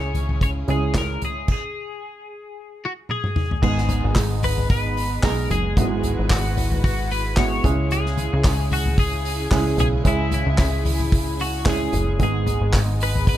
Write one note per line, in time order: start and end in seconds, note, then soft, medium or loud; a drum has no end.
0.00 0.64 C#2 medium
0.00 1.46 C#3 medium
0.00 1.50 C#3 medium
0.00 0.68 G#3 medium
0.00 0.68 C#4 medium
0.00 1.46 C#4 medium
0.00 0.68 E4 medium
0.00 1.44 E4 medium
0.00 0.69 G#4 medium
0.00 1.46 G#4 medium
0.00 0.38 C#5 medium
0.15 closed hi-hat medium
0.15 floor tom medium
0.29 floor tom medium
0.41 0.50 C#5 loud
0.41 kick loud
0.41 closed hi-hat medium
0.68 1.18 C#2 medium
0.68 1.37 G#3 medium
0.68 1.37 C#4 medium
0.68 1.37 E4 medium
0.68 1.37 G#4 medium
0.68 0.97 G#4 medium
0.68 closed hi-hat medium
0.94 1.21 A#4 medium
0.94 kick loud
0.94 snare loud
0.94 clap medium
0.94 closed hi-hat medium
1.22 1.48 G#4 medium
1.22 closed hi-hat medium
1.22 floor tom medium
1.48 3.07 G#4 medium
1.48 kick medium
1.48 crash medium
2.85 2.92 F#4 medium
3.09 3.62 G#4 loud
3.09 high tom medium
3.24 mid tom medium
3.36 mid tom medium
3.51 floor tom medium
3.62 4.02 G#1 loud
3.62 4.39 G#2 medium
3.62 4.53 G#3 medium
3.62 7.61 G#3 medium
3.62 4.53 B3 medium
3.62 5.75 B3 medium
3.62 4.53 D#4 medium
3.62 5.75 D#4 medium
3.62 4.54 G#4 medium
3.62 4.13 G#4 medium
3.62 kick loud
3.62 crash medium
3.78 snare soft
3.89 floor tom medium
3.89 hi-hat pedal medium
3.89 open hi-hat medium
4.04 4.15 G#1 medium
4.15 5.19 G#1 loud
4.15 kick loud
4.15 snare loud
4.15 clap medium
4.15 hi-hat pedal medium
4.15 open hi-hat medium
4.43 4.68 B4 medium
4.43 floor tom medium
4.43 hi-hat pedal medium
4.43 open hi-hat medium
4.58 floor tom medium
4.70 5.24 B4 medium
4.70 kick loud
4.70 hi-hat pedal medium
4.70 open hi-hat loud
4.97 hi-hat pedal medium
4.97 open hi-hat medium
5.23 5.48 B1 medium
5.23 5.69 G#3 medium
5.23 5.69 B3 medium
5.23 5.69 D#4 medium
5.23 5.69 G#4 medium
5.23 5.49 A#4 loud
5.23 kick loud
5.23 snare loud
5.23 clap loud
5.23 hi-hat pedal medium
5.23 open hi-hat medium
5.50 5.75 F#1 medium
5.50 6.33 G#4 loud
5.50 floor tom medium
5.50 hi-hat pedal medium
5.50 open hi-hat medium
5.77 6.16 G#1 loud
5.77 6.53 G#2 medium
5.77 5.84 F#3 medium
5.77 6.68 B3 medium
5.77 12.16 E4 medium
5.77 6.68 E4 medium
5.77 7.63 F#4 medium
5.77 6.68 F#4 medium
5.77 7.63 B4 medium
5.77 kick loud
5.77 hi-hat pedal medium
5.77 open hi-hat medium
5.83 6.71 G#3 medium
6.03 floor tom medium
6.03 hi-hat pedal medium
6.03 open hi-hat medium
6.19 6.30 G#1 medium
6.30 7.60 G#1 loud
6.30 6.83 F#4 medium
6.30 kick loud
6.30 snare loud
6.30 clap medium
6.30 hi-hat pedal medium
6.30 open hi-hat medium
6.57 floor tom medium
6.57 hi-hat pedal medium
6.57 open hi-hat medium
6.72 floor tom medium
6.84 7.09 F#4 loud
6.84 kick loud
6.84 hi-hat pedal medium
6.84 open hi-hat medium
7.11 7.38 B4 medium
7.11 hi-hat pedal medium
7.11 open hi-hat medium
7.37 7.63 G#3 medium
7.37 7.64 B3 medium
7.37 7.63 E4 medium
7.37 7.65 F#4 medium
7.37 7.92 C#5 loud
7.37 kick loud
7.37 snare loud
7.37 clap medium
7.37 hi-hat pedal medium
7.37 open hi-hat medium
7.64 8.29 C#2 loud
7.64 8.41 C#3 medium
7.64 12.16 C#3 medium
7.64 8.55 G#3 medium
7.64 8.55 C#4 medium
7.64 12.16 C#4 medium
7.64 8.55 E4 medium
7.64 8.56 G#4 loud
7.64 12.16 G#4 medium
7.64 kick loud
7.64 floor tom medium
7.64 hi-hat pedal medium
7.64 open hi-hat medium
7.91 8.68 G#4 loud
7.91 hi-hat pedal medium
7.91 open hi-hat medium
8.06 snare soft
8.17 floor tom medium
8.17 hi-hat pedal medium
8.17 open hi-hat medium
8.33 8.44 C#2 loud
8.44 9.48 C#2 medium
8.44 kick loud
8.44 snare loud
8.44 clap medium
8.44 hi-hat pedal medium
8.44 open hi-hat medium
8.71 8.97 F#4 medium
8.71 floor tom medium
8.71 hi-hat pedal medium
8.71 open hi-hat medium
8.86 floor tom medium
8.98 9.79 G#4 medium
8.98 kick loud
8.98 hi-hat pedal medium
8.98 open hi-hat loud
9.25 hi-hat pedal medium
9.25 open hi-hat medium
9.51 9.76 C#2 medium
9.51 9.97 G#3 medium
9.51 9.98 C#4 medium
9.51 9.98 E4 medium
9.51 9.98 G#4 medium
9.51 kick loud
9.51 snare loud
9.51 clap medium
9.51 hi-hat pedal medium
9.51 open hi-hat medium
9.78 10.03 B1 medium
9.78 10.55 C#3 medium
9.78 9.87 G#4 medium
9.78 floor tom medium
9.78 hi-hat pedal medium
9.78 open hi-hat medium
10.04 10.44 C#2 loud
10.04 10.96 G#3 medium
10.04 10.96 C#4 medium
10.04 10.96 E4 medium
10.04 10.33 E4 medium
10.04 10.96 G#4 medium
10.04 kick loud
10.04 hi-hat pedal medium
10.04 open hi-hat medium
10.31 11.43 E4 medium
10.31 floor tom medium
10.31 hi-hat pedal medium
10.31 open hi-hat medium
10.46 10.58 C#2 medium
10.58 11.89 C#2 medium
10.58 kick loud
10.58 snare loud
10.58 clap medium
10.58 hi-hat pedal medium
10.58 open hi-hat medium
10.85 floor tom medium
10.85 hi-hat pedal medium
10.85 open hi-hat medium
11.00 floor tom medium
11.12 kick loud
11.12 hi-hat pedal medium
11.12 open hi-hat loud
11.39 11.68 F#4 medium
11.39 hi-hat pedal medium
11.39 open hi-hat medium
11.65 12.12 G#3 medium
11.65 12.12 C#4 medium
11.65 12.12 E4 medium
11.65 12.12 G#4 medium
11.65 kick loud
11.65 snare loud
11.65 clap medium
11.65 hi-hat pedal medium
11.65 open hi-hat medium
11.69 12.22 G#4 medium
11.92 12.18 F#1 medium
11.92 floor tom medium
11.92 hi-hat pedal medium
11.92 open hi-hat medium
12.19 12.59 G#1 loud
12.19 12.96 G#2 medium
12.19 13.10 G#3 medium
12.19 13.37 G#3 medium
12.19 13.11 B3 medium
12.19 13.37 B3 medium
12.19 13.11 D#4 medium
12.19 13.37 D#4 medium
12.19 13.11 G#4 medium
12.19 12.71 G#4 medium
12.19 kick loud
12.19 hi-hat pedal medium
12.19 open hi-hat medium
12.47 floor tom medium
12.47 hi-hat pedal medium
12.47 open hi-hat medium
12.61 12.72 G#1 medium
12.73 13.37 G#1 loud
12.73 kick loud
12.73 snare loud
12.73 clap medium
12.73 hi-hat pedal medium
12.73 open hi-hat medium
13.00 13.28 B4 medium
13.00 hi-hat pedal medium
13.00 open hi-hat medium
13.15 floor tom medium
13.27 13.37 B4 loud
13.27 kick loud
13.27 hi-hat pedal medium
13.27 open hi-hat loud